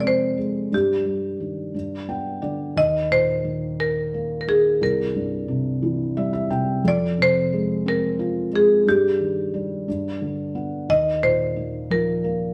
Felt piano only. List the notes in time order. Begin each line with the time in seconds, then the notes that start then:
Already playing: F2 C3 G#3
0.04 C4
0.38 G#3
0.72 G2
1.05 G3
1.40 D#3
1.74 G2
2.09 B3 G5
2.42 D3 D5
2.76 D#2
3.11 A#2
3.44 D#3
4.14 A#3
4.47 D#3
4.81 C2
5.15 G2
5.48 C3
5.82 E3
6.17 G3 E5
6.33 E5
6.50 C3 G5
6.84 F2
7.18 C3
7.53 G#3
7.86 C4
8.19 F4
8.53 G#3
8.86 G2
9.20 D#3
9.54 G3
9.88 G2
10.22 D3
10.55 B3
10.89 D#2
11.23 A#2
11.56 D#3
11.90 F3
12.24 A#3